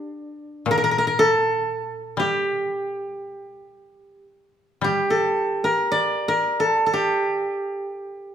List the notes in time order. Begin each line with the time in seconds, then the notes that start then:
Already playing: D4
0.66 A#2
0.71 A#4
0.78 A#4
0.84 A#4
0.91 A#4
0.98 A#4
1.07 A#4
1.19 A4
2.17 G3 G4
4.81 G3 G4
5.10 A4
5.64 A#4
5.92 D5
6.28 A#4
6.60 A4
6.86 A4
6.93 G4